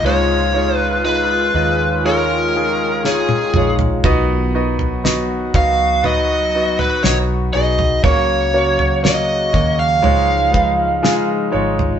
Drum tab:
SD |------------o---|----o-------o---|----o-------o---|
T1 |-------------o--|----------------|----------------|
T2 |--------------o-|----------------|----------------|
FT |---------------o|o--o--o-o--o---o|o--o--o-o------o|
BD |----------------|o-----o---------|o-----o---o-----|